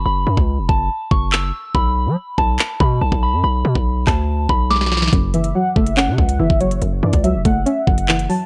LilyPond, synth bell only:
\new Staff \with { instrumentName = "Synth bell" } { \time 4/4 \key fis \minor \tempo 4 = 142 b''4. a''4 cis'''8 e'''4 | b''4. a''4 b''8 a''8 b''8 | b''4. a''4 b''8 d'''4 | r1 |
r1 | }